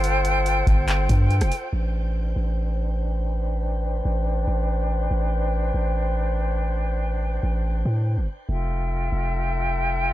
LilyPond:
<<
  \new Staff \with { instrumentName = "Flute section" } { \time 4/4 \key a \minor \tempo 4 = 142 <f' a' c'' g''>1 | <d' b' c'' g''>1~ | <d' b' c'' g''>1~ | <d' b' c'' g''>1~ |
<d' b' c'' g''>1 | <f' a' e'' g''>1 | }
  \new Staff \with { instrumentName = "808-style bass" } { \clef bass \time 4/4 \key a \minor g,,4. g,,4 g,8. f,,16 r8 | a,,4. a,,2~ a,,8~ | a,,4. a,,4 a,,4. | a,,4. a,,2~ a,,8~ |
a,,4. a,,4 a,8. g,,16 r8 | f,,4. f,,2~ f,,8 | }
  \new DrumStaff \with { instrumentName = "Drums" } \drummode { \time 4/4 hh8 hh8 hh8 <hh bd>8 <hc hh>8 <hh bd>8 hh16 <hh ss>16 hh8 | r4 r4 r4 r4 | r4 r4 r4 r4 | r4 r4 r4 r4 |
r4 r4 r4 r4 | r4 r4 r4 r4 | }
>>